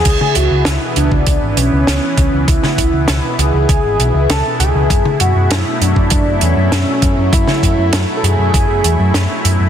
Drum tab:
CC |x---------------|----------------|----------------|----------------|
HH |x-x-x-x-x-x-x-x-|x-x-x-x-x-x-x-x-|x-x-x-x-x-x-x-x-|x-x-x-x-x-x-x-x-|
SD |----o-------o---|-o--o-------o---|----o-------o---|-o--o-------o---|
T2 |-o--------------|-o--------------|-o--------------|-o--------------|
BD |o------oo-----o-|o-o-----o-------|o------oo-----o-|o-o-----o-------|